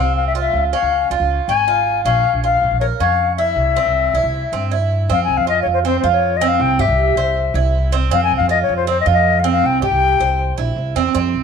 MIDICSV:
0, 0, Header, 1, 4, 480
1, 0, Start_track
1, 0, Tempo, 378788
1, 679, Time_signature, 4, 2, 24, 8
1, 14488, End_track
2, 0, Start_track
2, 0, Title_t, "Flute"
2, 0, Program_c, 0, 73
2, 0, Note_on_c, 0, 77, 80
2, 198, Note_off_c, 0, 77, 0
2, 204, Note_on_c, 0, 77, 85
2, 339, Note_off_c, 0, 77, 0
2, 346, Note_on_c, 0, 76, 76
2, 421, Note_off_c, 0, 76, 0
2, 519, Note_on_c, 0, 76, 74
2, 818, Note_off_c, 0, 76, 0
2, 927, Note_on_c, 0, 77, 82
2, 1371, Note_off_c, 0, 77, 0
2, 1881, Note_on_c, 0, 80, 112
2, 2553, Note_off_c, 0, 80, 0
2, 2592, Note_on_c, 0, 77, 99
2, 3045, Note_off_c, 0, 77, 0
2, 3090, Note_on_c, 0, 77, 90
2, 3535, Note_off_c, 0, 77, 0
2, 3555, Note_on_c, 0, 73, 81
2, 3631, Note_off_c, 0, 73, 0
2, 3806, Note_on_c, 0, 77, 93
2, 4253, Note_off_c, 0, 77, 0
2, 4271, Note_on_c, 0, 76, 87
2, 5911, Note_off_c, 0, 76, 0
2, 6485, Note_on_c, 0, 77, 97
2, 6617, Note_off_c, 0, 77, 0
2, 6640, Note_on_c, 0, 80, 91
2, 6808, Note_on_c, 0, 77, 100
2, 6827, Note_off_c, 0, 80, 0
2, 6949, Note_off_c, 0, 77, 0
2, 6957, Note_on_c, 0, 75, 98
2, 7093, Note_off_c, 0, 75, 0
2, 7125, Note_on_c, 0, 73, 85
2, 7189, Note_off_c, 0, 73, 0
2, 7269, Note_on_c, 0, 72, 93
2, 7337, Note_off_c, 0, 72, 0
2, 7432, Note_on_c, 0, 72, 84
2, 7571, Note_off_c, 0, 72, 0
2, 7596, Note_on_c, 0, 72, 82
2, 7733, Note_off_c, 0, 72, 0
2, 7758, Note_on_c, 0, 73, 82
2, 8070, Note_on_c, 0, 75, 90
2, 8089, Note_off_c, 0, 73, 0
2, 8212, Note_on_c, 0, 77, 90
2, 8231, Note_off_c, 0, 75, 0
2, 8382, Note_on_c, 0, 79, 92
2, 8401, Note_off_c, 0, 77, 0
2, 8619, Note_on_c, 0, 76, 89
2, 8638, Note_off_c, 0, 79, 0
2, 9573, Note_off_c, 0, 76, 0
2, 10299, Note_on_c, 0, 77, 96
2, 10428, Note_off_c, 0, 77, 0
2, 10436, Note_on_c, 0, 80, 98
2, 10589, Note_off_c, 0, 80, 0
2, 10604, Note_on_c, 0, 77, 90
2, 10754, Note_off_c, 0, 77, 0
2, 10771, Note_on_c, 0, 75, 90
2, 10917, Note_off_c, 0, 75, 0
2, 10929, Note_on_c, 0, 73, 90
2, 11076, Note_off_c, 0, 73, 0
2, 11109, Note_on_c, 0, 72, 84
2, 11247, Note_off_c, 0, 72, 0
2, 11269, Note_on_c, 0, 72, 84
2, 11407, Note_off_c, 0, 72, 0
2, 11416, Note_on_c, 0, 75, 92
2, 11485, Note_off_c, 0, 75, 0
2, 11573, Note_on_c, 0, 75, 89
2, 11906, Note_on_c, 0, 77, 90
2, 11925, Note_off_c, 0, 75, 0
2, 12055, Note_off_c, 0, 77, 0
2, 12062, Note_on_c, 0, 77, 95
2, 12241, Note_on_c, 0, 79, 89
2, 12260, Note_off_c, 0, 77, 0
2, 12446, Note_off_c, 0, 79, 0
2, 12454, Note_on_c, 0, 79, 98
2, 13356, Note_off_c, 0, 79, 0
2, 14488, End_track
3, 0, Start_track
3, 0, Title_t, "Cuban tres"
3, 0, Program_c, 1, 25
3, 0, Note_on_c, 1, 60, 74
3, 427, Note_off_c, 1, 60, 0
3, 443, Note_on_c, 1, 65, 68
3, 908, Note_off_c, 1, 65, 0
3, 925, Note_on_c, 1, 61, 72
3, 1389, Note_off_c, 1, 61, 0
3, 1406, Note_on_c, 1, 65, 71
3, 1871, Note_off_c, 1, 65, 0
3, 1885, Note_on_c, 1, 61, 65
3, 2117, Note_off_c, 1, 61, 0
3, 2125, Note_on_c, 1, 65, 66
3, 2591, Note_off_c, 1, 65, 0
3, 2604, Note_on_c, 1, 61, 80
3, 3071, Note_off_c, 1, 61, 0
3, 3088, Note_on_c, 1, 65, 60
3, 3553, Note_off_c, 1, 65, 0
3, 3564, Note_on_c, 1, 70, 56
3, 3799, Note_off_c, 1, 70, 0
3, 3807, Note_on_c, 1, 61, 75
3, 4273, Note_off_c, 1, 61, 0
3, 4288, Note_on_c, 1, 64, 70
3, 4754, Note_off_c, 1, 64, 0
3, 4770, Note_on_c, 1, 60, 70
3, 5236, Note_off_c, 1, 60, 0
3, 5254, Note_on_c, 1, 64, 59
3, 5718, Note_off_c, 1, 64, 0
3, 5738, Note_on_c, 1, 60, 70
3, 5967, Note_off_c, 1, 60, 0
3, 5974, Note_on_c, 1, 64, 61
3, 6438, Note_off_c, 1, 64, 0
3, 6457, Note_on_c, 1, 60, 76
3, 6919, Note_off_c, 1, 60, 0
3, 6932, Note_on_c, 1, 65, 61
3, 7396, Note_off_c, 1, 65, 0
3, 7410, Note_on_c, 1, 60, 72
3, 7642, Note_off_c, 1, 60, 0
3, 7649, Note_on_c, 1, 65, 69
3, 8115, Note_off_c, 1, 65, 0
3, 8127, Note_on_c, 1, 60, 95
3, 8594, Note_off_c, 1, 60, 0
3, 8607, Note_on_c, 1, 67, 76
3, 9073, Note_off_c, 1, 67, 0
3, 9088, Note_on_c, 1, 72, 75
3, 9553, Note_off_c, 1, 72, 0
3, 9571, Note_on_c, 1, 64, 69
3, 10035, Note_off_c, 1, 64, 0
3, 10042, Note_on_c, 1, 60, 88
3, 10266, Note_off_c, 1, 60, 0
3, 10282, Note_on_c, 1, 60, 91
3, 10749, Note_off_c, 1, 60, 0
3, 10761, Note_on_c, 1, 65, 65
3, 11228, Note_off_c, 1, 65, 0
3, 11243, Note_on_c, 1, 60, 72
3, 11475, Note_off_c, 1, 60, 0
3, 11480, Note_on_c, 1, 65, 69
3, 11947, Note_off_c, 1, 65, 0
3, 11962, Note_on_c, 1, 60, 92
3, 12428, Note_off_c, 1, 60, 0
3, 12446, Note_on_c, 1, 67, 70
3, 12909, Note_off_c, 1, 67, 0
3, 12931, Note_on_c, 1, 72, 67
3, 13392, Note_off_c, 1, 72, 0
3, 13402, Note_on_c, 1, 64, 65
3, 13867, Note_off_c, 1, 64, 0
3, 13888, Note_on_c, 1, 60, 90
3, 14109, Note_off_c, 1, 60, 0
3, 14124, Note_on_c, 1, 60, 88
3, 14488, Note_off_c, 1, 60, 0
3, 14488, End_track
4, 0, Start_track
4, 0, Title_t, "Upright bass"
4, 0, Program_c, 2, 32
4, 0, Note_on_c, 2, 36, 87
4, 634, Note_off_c, 2, 36, 0
4, 676, Note_on_c, 2, 37, 86
4, 907, Note_off_c, 2, 37, 0
4, 1043, Note_on_c, 2, 37, 81
4, 1385, Note_off_c, 2, 37, 0
4, 1396, Note_on_c, 2, 37, 72
4, 1513, Note_off_c, 2, 37, 0
4, 1518, Note_on_c, 2, 37, 84
4, 1749, Note_off_c, 2, 37, 0
4, 1874, Note_on_c, 2, 32, 74
4, 2564, Note_off_c, 2, 32, 0
4, 2595, Note_on_c, 2, 34, 84
4, 2828, Note_off_c, 2, 34, 0
4, 2955, Note_on_c, 2, 34, 75
4, 3303, Note_off_c, 2, 34, 0
4, 3315, Note_on_c, 2, 34, 77
4, 3427, Note_off_c, 2, 34, 0
4, 3434, Note_on_c, 2, 34, 75
4, 3668, Note_off_c, 2, 34, 0
4, 3798, Note_on_c, 2, 41, 77
4, 4488, Note_off_c, 2, 41, 0
4, 4512, Note_on_c, 2, 36, 94
4, 4748, Note_off_c, 2, 36, 0
4, 4888, Note_on_c, 2, 36, 75
4, 5231, Note_off_c, 2, 36, 0
4, 5241, Note_on_c, 2, 36, 77
4, 5359, Note_off_c, 2, 36, 0
4, 5367, Note_on_c, 2, 36, 83
4, 5596, Note_off_c, 2, 36, 0
4, 5727, Note_on_c, 2, 43, 82
4, 6413, Note_off_c, 2, 43, 0
4, 6452, Note_on_c, 2, 41, 88
4, 6679, Note_off_c, 2, 41, 0
4, 6690, Note_on_c, 2, 36, 68
4, 6800, Note_off_c, 2, 36, 0
4, 6807, Note_on_c, 2, 41, 81
4, 7151, Note_off_c, 2, 41, 0
4, 7165, Note_on_c, 2, 41, 78
4, 7623, Note_off_c, 2, 41, 0
4, 7645, Note_on_c, 2, 41, 93
4, 8331, Note_off_c, 2, 41, 0
4, 8358, Note_on_c, 2, 36, 97
4, 8591, Note_off_c, 2, 36, 0
4, 8601, Note_on_c, 2, 43, 81
4, 8711, Note_off_c, 2, 43, 0
4, 8719, Note_on_c, 2, 36, 101
4, 9065, Note_off_c, 2, 36, 0
4, 9072, Note_on_c, 2, 36, 82
4, 9535, Note_off_c, 2, 36, 0
4, 9557, Note_on_c, 2, 36, 103
4, 10245, Note_off_c, 2, 36, 0
4, 10281, Note_on_c, 2, 41, 101
4, 10511, Note_off_c, 2, 41, 0
4, 10527, Note_on_c, 2, 36, 73
4, 10634, Note_off_c, 2, 36, 0
4, 10642, Note_on_c, 2, 41, 103
4, 10986, Note_off_c, 2, 41, 0
4, 11003, Note_on_c, 2, 41, 80
4, 11459, Note_off_c, 2, 41, 0
4, 11483, Note_on_c, 2, 41, 106
4, 12167, Note_off_c, 2, 41, 0
4, 12207, Note_on_c, 2, 36, 98
4, 12429, Note_off_c, 2, 36, 0
4, 12436, Note_on_c, 2, 43, 84
4, 12553, Note_off_c, 2, 43, 0
4, 12562, Note_on_c, 2, 36, 92
4, 12904, Note_off_c, 2, 36, 0
4, 12922, Note_on_c, 2, 36, 91
4, 13377, Note_off_c, 2, 36, 0
4, 13407, Note_on_c, 2, 34, 80
4, 13620, Note_off_c, 2, 34, 0
4, 13638, Note_on_c, 2, 36, 79
4, 13855, Note_off_c, 2, 36, 0
4, 13879, Note_on_c, 2, 40, 82
4, 14095, Note_off_c, 2, 40, 0
4, 14124, Note_on_c, 2, 41, 91
4, 14350, Note_off_c, 2, 41, 0
4, 14368, Note_on_c, 2, 36, 70
4, 14473, Note_off_c, 2, 36, 0
4, 14488, End_track
0, 0, End_of_file